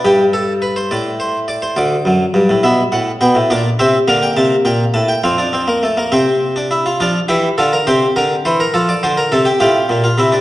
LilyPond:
<<
  \new Staff \with { instrumentName = "Harpsichord" } { \time 6/8 \key g \mixolydian \tempo 4. = 69 << { g'8 a'8 b'16 c''16 d''8 c''8 d''16 c''16 | d''4. e''8 fis''8 g''8 | \key f \major d''8 e''8 f''16 g''16 a''8 g''8 a''16 g''16 | f''4. g''4. |
f'8 g'8 a'16 bes'16 c''8 bes'8 c''16 bes'16 | a'16 d''16 c''16 bes'16 a'16 g'16 f'4. | } \\ { r2. | r2. | d'8 c'8 bes2 | c'16 d'16 c'16 bes16 a16 bes16 c'8. d'16 e'16 f'16 |
d'8 e'8 f'8 g'4. | r4. g'8. f'16 e'16 d'16 | } >> }
  \new Staff \with { instrumentName = "Harpsichord" } { \clef bass \time 6/8 \key g \mixolydian g,4. a,4. | d,8 fis,8 g,16 a,16 b,8 a,8 b,16 a,16 | \key f \major bes,8 c8 d8 c8 bes,8 a,8 | f,4. c4. |
f8 e8 d8 c8 d8 e8 | f8 d8 c8 a,8 bes,8 c8 | }
>>